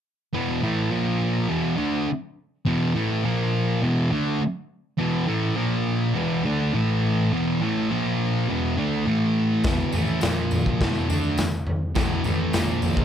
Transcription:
0.34 E2 B2 E3
0.63 A2 E3 A3
0.90 A#2 F3 A#3
1.48 E2 B2 E3
1.77 D3 A3 D4
2.65 E2 B2 E3
2.95 A2 E3 A3
3.24 A#2 F3 A#3
3.82 E2 B2 E3
4.11 D3 A3 D4
4.98 E2 B2 E3
5.27 A2 E3 A3
5.57 A#2 F3 A#3
6.14 E2 B2 E3
6.45 D3 A3 D4
6.74 A2 E3 A3
7.33 E2 B2 E3
7.61 A2 E3 A3
7.90 A#2 F3 A#3
8.48 E2 B2 E3
8.77 D3 A3 D4
9.07 A2 E3 A3
9.64 E2 B2 E3, kick, snare, floor tom, tambourine
9.92 A2 E3 A3, floor tom, tambourine
10.07 tambourine
10.21 A#2 F3 A#3, snare, floor tom, tambourine
10.51 floor tom, tambourine
10.66 kick
10.80 E2 B2 E3, kick, snare, floor tom
10.95 tambourine
11.09 D3 A3 D4, floor tom, tambourine
11.24 tambourine
11.38 snare, floor tom, tambourine
11.67 floor tom
11.95 E2 B2 E3, kick, snare, floor tom, tambourine
12.24 A2 E3 A3, floor tom, tambourine
12.53 A#2 F3 A#3, snare, floor tom, tambourine
12.82 floor tom, tambourine
12.97 kick

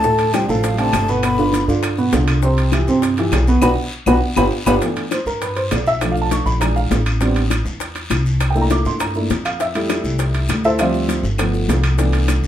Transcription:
Already playing: D2 A3 A5
0.03 A2 A3 A4, high bongo, long guiro, maracas
0.19 high bongo, high timbale, maracas
0.33 C3 G3 C4 D4 G5, high bongo, high timbale, short guiro, claves, maracas
0.48 A1 A2 F3 A3 A4 F5, high bongo, short guiro, maracas
0.64 high bongo, high timbale, long guiro, maracas
0.78 C3 A3 C4 D4 A5, high bongo, high timbale, maracas
0.93 G1, high bongo, low bongo, high timbale, short guiro, claves, maracas
1.08 B2 B3 B4, short guiro, maracas
1.23 B3 B5, high bongo, high timbale, long guiro, claves, maracas
1.38 D3 D4 F4, high bongo, maracas
1.53 high bongo, high timbale, short guiro, maracas
1.68 G2 D3 D4 F4, high bongo, short guiro, maracas
1.83 high bongo, high timbale, long guiro, claves, maracas
1.97 B2 B3 B4, high bongo, maracas
2.13 C2 D3 D4 F4, high bongo, low bongo, high timbale, low timbale, short guiro, maracas
2.28 high timbale, short guiro, claves, maracas
2.43 C3 C4 C5, high bongo, long guiro, maracas
2.57 high bongo, high timbale, maracas
2.72 E3 E4 G4, high bongo, high timbale, short guiro, claves, maracas
2.87 G2 C3 C4 C5, high bongo, short guiro, maracas
3.02 high bongo, high timbale, long guiro, maracas
3.17 E3 E4 G4, high bongo, high timbale, maracas
3.32 B1, high bongo, low bongo, high timbale, low timbale, short guiro, claves, maracas
3.47 B2 B3 B4, short guiro, maracas
3.62 B1 B3 D4 F#4 B5, low bongo, high timbale, long guiro, claves, maracas
4.06 B1 B3 D4 F#4 B5, low bongo, high timbale, long guiro, claves, maracas
4.36 G1 B3 D4 F4 G4 B5, low bongo, high timbale, long guiro, claves, maracas
4.66 G1 B3 D4 F4 G4 B5, low bongo, high timbale, long guiro, claves, maracas
4.81 E3 A3 B3 D4, high bongo, high timbale, long guiro, maracas
4.96 high bongo, high timbale, maracas
5.11 C5, high bongo, high timbale, short guiro, claves, maracas
5.26 G2 A#4, high bongo, short guiro, maracas
5.42 B4, high bongo, high timbale, long guiro, maracas
5.56 C5, high bongo, high timbale, maracas
5.71 B1 D5, high bongo, low bongo, high timbale, low timbale, short guiro, claves, maracas
5.86 E5, short guiro, maracas
6.01 F3 A3 D4 D5, high bongo, high timbale, long guiro, claves, maracas
6.12 F5
6.16 high bongo, maracas
6.21 A5
6.31 C#6, high bongo, high timbale, short guiro, maracas
6.46 A#1 B5, high bongo, short guiro, maracas
6.60 E3 G#3 D4 A#5, high bongo, high timbale, long guiro, claves, maracas
6.76 F5, high bongo, maracas
6.91 A1, high bongo, low bongo, high timbale, low timbale, short guiro, maracas
7.06 high timbale, short guiro, claves, maracas
7.20 G3 B3 C4 D4, high bongo, high timbale, long guiro, maracas
7.36 high bongo, high timbale, maracas
7.50 high bongo, high timbale, short guiro, claves, maracas
7.65 E2, high bongo, short guiro, maracas
7.80 high bongo, high timbale, long guiro, maracas
7.95 high bongo, high timbale, maracas
8.10 C2, high bongo, low bongo, high timbale, short guiro, claves, maracas
8.26 short guiro, maracas
8.40 high bongo, high timbale, long guiro, claves, maracas
8.50 G5
8.55 A3 A#3 D4 E4, high bongo, maracas
8.61 A#5
8.70 D6, high bongo, high timbale, short guiro, maracas
8.85 G2 C6, high bongo, short guiro, maracas
9.00 A#5, high bongo, high timbale, long guiro, claves, maracas
9.15 A3 A#3 D4 E4, high bongo, maracas
9.30 F2, high bongo, low bongo, high timbale, short guiro, maracas
9.45 F5, high timbale, short guiro, claves, maracas
9.60 E5, high bongo, high timbale, long guiro, maracas
9.75 G3 A3 E4, high bongo, high timbale, maracas
9.89 high bongo, high timbale, short guiro, claves, maracas
10.04 C2, high bongo, short guiro, maracas
10.19 high bongo, high timbale, long guiro, maracas
10.34 high bongo, high timbale, maracas
10.49 D2, high bongo, low bongo, high timbale, short guiro, claves, maracas
10.64 E4 A4 C5 E5, short guiro, maracas
10.79 F3 G3 C4 F4 C5 D5 E5 F5, high bongo, high timbale, long guiro, claves, maracas
10.94 high bongo, maracas
11.09 high bongo, high timbale, short guiro, maracas
11.23 G1, high bongo, short guiro, maracas
11.38 F3 A3 B3, high bongo, high timbale, long guiro, claves, maracas
11.54 high bongo, maracas
11.68 C2, high bongo, low bongo, high timbale, low timbale, short guiro, maracas
11.84 high timbale, short guiro, claves, maracas
11.98 E3 A3 B3 D4, high bongo, high timbale, long guiro, maracas
12.13 high bongo, high timbale, maracas
12.28 high bongo, high timbale, short guiro, claves, maracas
12.43 G2, high bongo, short guiro, maracas

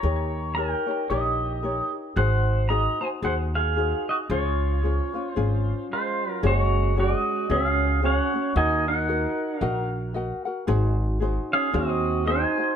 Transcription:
Already playing: C#5 A#5
0.03 D#2 D#4 G4 A#4 C#5
0.55 D#4 G4 A#4 C#5 G5
0.87 D#4 G4 C#5
1.10 A#1 D#4 G4 A#4 C#5 D#5
1.63 D#4 G4 A#4 C#5
2.16 G#1 D#4 F#4 G#4 C5 F#5
2.69 D#4 F#4 G#4 C5 D#5 A#5
3.01 D#4 F#4 C5 G#5
3.22 D#2 D#4 F#4 G#4 C5 F#5
3.55 G#4 F5
3.76 D#4 F#4 G#4 C5
4.09 F#4 D#5
4.30 C#2 C#4 F4 G#4 C#5
4.83 C#4 F4 G#4 C5
5.14 C#4 F4 C5
5.31 C5
5.36 G#1 C#4 F4 G#4
5.90 G#3 F4 C5
6.43 F#1 G#3 C#4 F#4 G#4 C#5
6.47 C#5
6.96 G#3 C#4 F#4 G#4 C#5
7.00 F#4 D#5
7.49 C#2 C#4 F#4 G#4 C#5 F5
8.02 C#4 F#4 G#4 C#5 F#5
8.34 C#4 F#4 C#5
8.56 D#2 D#4 F#4 A#4 D#5 F#5 G#5
8.88 D#4 A#4 F#5
9.08 F#4 A#4 D#5 F#5
9.55 D4 F5
9.61 A#1 F#4 A#4 D#5 F#5
10.14 F#4 A#4 D#5 F#5
10.45 F#4 A#4 F#5
10.67 G#1 D#4 F#4 G#4 C5
11.20 D#4 F#4 G#4 C5
11.52 C#4 G#4 F5
11.73 D#2 C4 D#4 F#4 G#4 C5 D#5
11.77 F#4
12.26 D#4 F#4 G#4 C5 G#5
12.30 C5
12.58 D#4 F#4 C5

